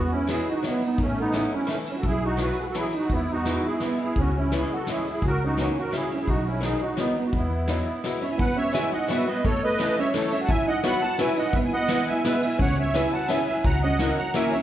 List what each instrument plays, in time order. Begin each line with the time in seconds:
Already playing: upright bass E2, accordion B3 F#4, felt piano B3
0.12 accordion C#4 E4, felt piano C#4
0.27 steel-string acoustic guitar F#3 G#3 B3 E4, accordion E4 G#4, snare, ride
0.32 felt piano E4
0.48 accordion D#4 F#4, felt piano D#4
0.63 steel-string acoustic guitar F#3 G#3 B3 E4, accordion B3, snare, ride
0.67 felt piano B3, accordion E4
0.82 accordion B3 D#4, ride
0.87 felt piano B3
0.98 upright bass A1, accordion A3 C#4, kick, ride
1.03 felt piano A3
1.20 felt piano A3, accordion B3 D#4
1.32 steel-string acoustic guitar E3 A3 C#4 E4, snare, ride
1.54 accordion C#4 E4, felt piano C#4
1.67 steel-string acoustic guitar E3 A3 C#4 E4, accordion A3 C#4, snare, ride
1.73 felt piano A3
1.86 accordion C#4, ride
1.90 felt piano C#4, accordion E4
1.96 accordion F#4 A4, felt piano F#4
2.03 upright bass B1, accordion E4, kick, ride
2.08 felt piano E4, accordion G#4
2.24 accordion D#4 F#4, felt piano D#4
2.37 steel-string acoustic guitar E3 F#3 B3 E4, snare, ride
2.41 accordion F#4 B4, felt piano F#4
2.60 felt piano F#4 G#4, accordion F#4 A4 B4
2.67 felt piano F#4, accordion F#4
2.71 steel-string acoustic guitar E3 F#3, accordion A4, snare, ride
2.75 steel-string acoustic guitar B3 E4, felt piano E4, accordion E4
2.80 accordion G#4
2.92 felt piano D#4, ride
2.97 accordion D#4 F#4
3.10 upright bass E2, accordion B3, felt piano B3, kick, ride
3.15 accordion E4
3.31 felt piano B3, accordion D#4 F#4
3.45 steel-string acoustic guitar E3 G#3 B3 E4, snare, ride
3.64 accordion E4 G#4, felt piano E4
3.80 steel-string acoustic guitar E3 G#3 B3 E4, accordion B3, snare, ride
3.85 felt piano B3, accordion E4
3.99 accordion E4, ride
4.03 felt piano E4, accordion G#4
4.15 upright bass C#2, accordion C#4, kick, ride
4.20 felt piano C#4, accordion F#4
4.36 accordion C#4 E4, felt piano C#4
4.52 steel-string acoustic guitar E3 G#3 B3 C#4, felt piano E4, accordion E4, snare, ride
4.58 accordion G#4
4.73 accordion F#4 A4, felt piano F#4
4.87 steel-string acoustic guitar E3 G#3 B3 C#4, felt piano E4, snare, ride
4.91 accordion E4 G#4
5.05 ride
5.09 accordion E4 G#4, felt piano E4
5.22 upright bass C#2, accordion F#4, kick, ride
5.27 felt piano F#4, accordion A#4
5.44 felt piano C#4, accordion D#4 F#4
5.57 steel-string acoustic guitar E3 F#3 A#3 C#4, snare, ride
5.78 accordion F#4 A#4, felt piano F#4
5.92 steel-string acoustic guitar E3 F#3 A#3 C#4, accordion E4, snare, ride
5.96 felt piano E4, accordion G#4
6.11 accordion C#4 E4, felt piano C#4, ride
6.20 accordion E4 G#4, felt piano E4
6.27 upright bass B1, accordion D#4 F#4, felt piano D#4, kick, ride
6.45 accordion C#4 E4, felt piano C#4
6.61 steel-string acoustic guitar D#3 F#3 B3 D#4, accordion D#4 G#4, snare, ride
6.66 felt piano D#4
6.80 accordion D#4 F#4
6.84 felt piano D#4
6.97 steel-string acoustic guitar D#3 F#3 B3 D#4, accordion B3 D#4, felt piano B3, snare, ride
7.16 accordion B3 D#4, felt piano B3, ride
7.26 felt piano D#4, accordion F#4
7.32 upright bass E2, felt piano B3, accordion B3 E4, kick, ride
7.68 steel-string acoustic guitar F#3 G#3 B3 E4, snare, ride
8.04 steel-string acoustic guitar F#3 G#3 B3 E4, snare, ride
8.21 felt piano C#4, accordion C#5 E5, ride
8.29 felt piano E4, accordion E5 G#5
8.38 felt piano B3, accordion B4 F#5, kick, ride
8.56 felt piano C#4, accordion C#5 E5
8.73 steel-string acoustic guitar F#3 G#3 B3 E4 F#4, felt piano E4, accordion E5 G#5, snare, ride
8.92 felt piano D#4, accordion D#5 F#5
9.08 steel-string acoustic guitar F#3 G#3 B3 E4 F#4, felt piano B3, accordion B4 E5, snare, ride
9.27 felt piano B3, accordion B4 D#5, ride
9.44 felt piano A3, accordion A4 C#5, kick, ride
9.64 felt piano A3, accordion B4 D#5
9.78 steel-string acoustic guitar E3 A3 C#4 E4 A4, snare, ride
9.98 felt piano C#4, accordion C#5 E5
10.14 steel-string acoustic guitar E3 A3 C#4 E4 A4, felt piano A3, accordion A4 C#5, snare, ride
10.31 felt piano C#4, accordion C#5 E5, ride
10.41 felt piano F#4, accordion F#5 A5
10.49 felt piano E4, accordion E5 G#5, kick, ride
10.67 felt piano D#4, accordion D#5 F#5
10.83 steel-string acoustic guitar F#3 B3 E4 F#4 B4, felt piano F#4, accordion F#5 B5, snare, ride
11.02 felt piano F#4, accordion F#5 A5
11.18 steel-string acoustic guitar F#3 B3 E4 F#4 B4, felt piano E4, accordion E5 G#5, snare, ride
11.36 felt piano D#4, accordion D#5 F#5, ride
11.53 felt piano B3, accordion B4 E5, kick, ride
11.65 felt piano E4, accordion G#5
11.73 felt piano B3, accordion D#5 F#5
11.88 steel-string acoustic guitar G#3 B3 E4 G#4 B4, snare, ride
12.08 felt piano E4, accordion E5 G#5
12.24 steel-string acoustic guitar G#3 B3 E4 G#4 B4, felt piano B3, accordion B4 E5, snare, ride
12.43 felt piano E4, accordion E5 G#5, ride
12.59 upright bass C#2, felt piano C#4, accordion C#5 F#5, kick, ride
12.78 felt piano C#4, accordion C#5 E5
12.94 steel-string acoustic guitar B3 C#4 E4 G#4 B4, felt piano E4, accordion E5 G#5, snare, ride
13.13 felt piano F#4, accordion F#5 A5
13.28 steel-string acoustic guitar B3 C#4 E4 G#4 B4, felt piano E4, accordion E5 G#5, snare, ride
13.47 felt piano E4, accordion E5 G#5, ride
13.64 upright bass C#2, felt piano F#4, accordion F#5 A#5, kick, ride
13.82 felt piano C#4, accordion D#5 F#5
13.99 steel-string acoustic guitar A#3 C#4 E4 F#4 A#4, snare, ride
14.17 felt piano F#4, accordion F#5 A#5
14.34 steel-string acoustic guitar A#3 C#4 E4 F#4 A#4, felt piano E4, accordion E5 G#5, snare, ride
14.52 felt piano C#4, accordion C#5 E5, ride